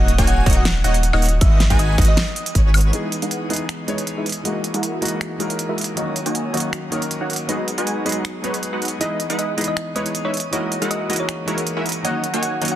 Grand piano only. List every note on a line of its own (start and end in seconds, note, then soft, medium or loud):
2.91 3.47 E3 medium
2.91 3.47 G#3 medium
2.91 3.48 B3 medium
2.91 3.48 D#4 medium
2.95 3.49 G#4 medium
3.49 3.85 E3 medium
3.49 3.86 G#3 medium
3.49 3.86 B3 medium
3.49 3.86 D#4 medium
3.49 3.86 G#4 medium
3.87 4.24 E3 medium
3.87 4.25 G#3 medium
3.87 4.25 B3 medium
3.87 4.25 D#4 medium
3.87 4.25 C#5 loud
4.43 4.99 E3 medium
4.43 4.99 G#3 medium
4.43 5.00 A#3 medium
4.43 5.00 D#4 medium
4.47 5.01 F#4 medium
5.01 5.36 E3 medium
5.01 5.37 G#3 medium
5.01 5.38 A#3 medium
5.01 5.38 D#4 medium
5.01 5.38 F#4 medium
5.38 5.94 E3 medium
5.38 5.94 G#3 medium
5.38 5.95 A#3 medium
5.38 5.95 D#4 medium
5.42 5.96 A#4 loud
5.95 6.51 D#3 medium
5.95 6.51 F#3 medium
5.95 6.52 A#3 medium
5.95 6.52 C#4 medium
5.99 6.53 F#4 medium
6.53 6.88 D#3 medium
6.53 6.89 F#3 medium
6.53 6.90 A#3 medium
6.53 6.90 C#4 medium
6.53 6.90 F#4 medium
6.90 7.46 D#3 medium
6.90 7.45 F#3 medium
6.90 7.47 A#3 medium
6.90 7.47 C#4 medium
6.90 7.48 A#4 loud
7.47 8.03 F#3 medium
7.47 8.03 G#3 medium
7.47 8.04 B3 medium
7.47 8.04 D#4 medium
7.47 8.05 G#4 medium
8.05 8.40 F#3 medium
8.05 8.41 G#3 medium
8.05 8.42 B3 medium
8.05 8.42 D#4 medium
8.05 8.42 G#4 medium
8.42 8.98 F#3 medium
8.42 8.98 G#3 medium
8.42 8.99 B3 medium
8.42 8.99 D#4 medium
8.46 9.00 B4 medium
8.99 9.55 E3 medium
8.99 9.55 G#3 medium
8.99 9.56 B3 medium
8.99 9.56 D#4 medium
9.03 9.57 G#4 medium
9.57 9.93 E3 medium
9.57 9.93 G#3 medium
9.57 9.94 B3 medium
9.57 9.94 D#4 medium
9.57 9.94 G#4 medium
9.95 10.32 E3 medium
9.95 10.32 G#3 medium
9.95 10.33 B3 medium
9.95 10.33 D#4 medium
9.95 10.33 C#5 medium
10.51 11.06 E3 medium
10.51 11.07 G#3 medium
10.51 11.07 A#3 medium
10.51 11.08 D#4 medium
10.55 11.08 F#4 medium
11.09 11.44 E3 medium
11.09 11.45 G#3 medium
11.09 11.45 A#3 medium
11.09 11.46 D#4 medium
11.09 11.46 F#4 medium
11.46 12.01 E3 medium
11.46 12.02 G#3 medium
11.46 12.02 A#3 medium
11.46 12.03 D#4 medium
11.46 12.03 A#4 medium
12.03 12.58 D#3 medium
12.03 12.59 F#3 medium
12.03 12.59 A#3 medium
12.03 12.60 C#4 medium
12.07 12.60 F#4 medium
12.61 12.76 D#3 medium
12.61 12.76 F#3 medium
12.61 12.76 A#3 medium
12.61 12.76 C#4 medium
12.61 12.76 F#4 medium